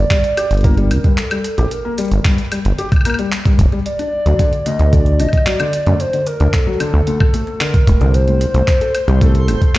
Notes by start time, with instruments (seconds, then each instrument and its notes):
Already playing: soft synth lead D5
0.11 felt piano G3, kick, clap, closed hi-hat
0.24 closed hi-hat
0.37 felt piano G4, closed hi-hat, high woodblock
0.51 acid bass G1, closed hi-hat
0.54 closed hi-hat
0.57 closed hi-hat
0.61 felt piano A#3, kick, closed hi-hat
0.64 soft synth lead A#4, closed hi-hat
0.68 closed hi-hat
0.71 closed hi-hat
0.74 closed hi-hat
0.77 felt piano G3, closed hi-hat
0.91 acid bass D2, closed hi-hat, high woodblock
1.04 felt piano G2, kick, closed hi-hat
1.18 soft synth lead A4, clap, closed hi-hat
1.31 felt piano G3, closed hi-hat, high woodblock, shaker
1.44 closed hi-hat
1.58 acid bass A#1, felt piano G4, closed hi-hat
1.71 soft synth lead A#4, closed hi-hat
1.85 felt piano A#3
1.98 felt piano G3, closed hi-hat, shaker
2.01 shaker
2.05 shaker
2.08 acid bass G1, closed hi-hat, shaker
2.25 felt piano G2, kick, clap, closed hi-hat
2.38 closed hi-hat
2.52 felt piano G3, closed hi-hat, high woodblock
2.65 acid bass G1, closed hi-hat
2.78 felt piano G4, closed hi-hat
2.92 kick, closed hi-hat, high woodblock
2.96 high woodblock
3.01 high woodblock
3.05 felt piano A#3, closed hi-hat, high woodblock
3.10 high woodblock
3.14 high woodblock
3.19 felt piano G3, closed hi-hat
3.32 clap, closed hi-hat
3.45 felt piano G2, kick, closed hi-hat
3.59 acid bass F1, kick, closed hi-hat
3.72 felt piano G3, closed hi-hat
3.86 soft synth lead D5, closed hi-hat
3.99 felt piano D4, closed hi-hat
4.26 acid bass D2, felt piano F#3, closed hi-hat
4.39 felt piano D3, kick, closed hi-hat
4.53 closed hi-hat
4.66 felt piano D2, soft synth lead D#5, closed hi-hat
4.79 acid bass D2, closed hi-hat
4.93 felt piano D3, soft synth lead D5, kick, closed hi-hat
5.06 closed hi-hat
5.19 acid bass A1, felt piano D4, soft synth lead D#5, closed hi-hat, high woodblock
5.29 high woodblock
5.33 kick, closed hi-hat
5.37 high woodblock
5.46 felt piano F#3, soft synth lead D5, clap, closed hi-hat
5.60 felt piano D3, closed hi-hat, high woodblock, shaker
5.73 closed hi-hat
5.87 felt piano D2, acid bass F#2, closed hi-hat
6.00 soft synth lead C5, closed hi-hat
6.13 felt piano D3, closed hi-hat
6.27 soft synth lead A#4, closed hi-hat, shaker
6.40 acid bass D2, felt piano D4, closed hi-hat
6.53 soft synth lead A4, kick, clap, closed hi-hat
6.67 felt piano F#3
6.80 felt piano D3, closed hi-hat, high woodblock
6.94 acid bass D2
7.07 felt piano D2, closed hi-hat
7.20 kick, high woodblock
7.34 felt piano A3, closed hi-hat
7.47 closed hi-hat
7.60 felt piano D3, soft synth lead A#4, clap, closed hi-hat
7.74 kick, closed hi-hat
7.87 acid bass D1, felt piano A2, kick, closed hi-hat
8.01 acid bass C2, felt piano D3, closed hi-hat
8.14 soft synth lead C5, synth texture C5, closed hi-hat
8.28 felt piano A2, closed hi-hat
8.41 closed hi-hat
8.54 acid bass C2, felt piano A3, closed hi-hat
8.68 kick, clap, closed hi-hat
8.81 felt piano A4, closed hi-hat
8.95 closed hi-hat, high woodblock
9.08 acid bass C2, felt piano G3, closed hi-hat
9.21 felt piano A3, soft synth lead A4, kick, closed hi-hat
9.35 closed hi-hat
9.48 acid bass G1, felt piano A2, closed hi-hat, high woodblock
9.62 kick, closed hi-hat
9.68 soft synth lead A4
9.75 felt piano A3, soft synth lead G4, clap, closed hi-hat